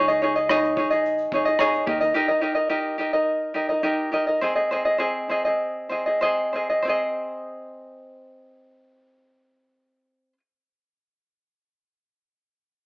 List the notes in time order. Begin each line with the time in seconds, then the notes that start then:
Already playing: C#2
0.08 D#4 G#4 D#5, shaker
0.22 D#4 G#4 C#5 D#5
0.35 D#4 G#4 D#5, shaker
0.49 D#4 G#4 C#5 D#5, cross-stick, shaker
0.65 shaker
0.77 A#1 D#4 G#4 C#5 D#5, kick
0.90 D#4 G#4 D#5, shaker
1.05 shaker
1.18 shaker
1.32 G#1 D#4 G#4 C#5 D#5, kick
1.45 D#4 G#4 D#5, shaker
1.59 D#4 G#4 C#5 D#5, cross-stick, shaker
1.74 shaker
1.86 D#2 D#4 G4 A#4 D#5, kick
2.00 D#4 A#4 D#5, shaker
2.14 D#4 G4 A#4 D#5
2.28 D#4 A#4 D#5
2.41 D#4 G4 A#4 D#5
2.55 D#4 A#4 D#5
2.69 D#4 G4 A#4 D#5
2.98 D#4 G4 A#4 D#5
3.13 D#4 A#4 D#5
3.54 D#4 G4 A#4 D#5
3.69 D#4 A#4 D#5
3.83 D#4 G4 A#4 D#5
4.12 D#4 G4 A#4 D#5
4.27 D#4 A#4 D#5
4.41 C4 G#4 C5 D#5
4.55 C4 G#4 D#5
4.71 C4 G#4 C5 D#5
4.85 C4 G#4 D#5
4.98 C4 G#4 C5 D#5
5.29 C4 G#4 C5 D#5
5.45 C4 G#4 D#5
5.89 C4 G#4 C5 D#5
6.06 C4 G#4 D#5
6.21 C4 G#4 C5 D#5
6.53 C4 G#4 C5 D#5
6.70 C4 G#4 D#5
6.82 C4 C5
6.87 G#4 D#5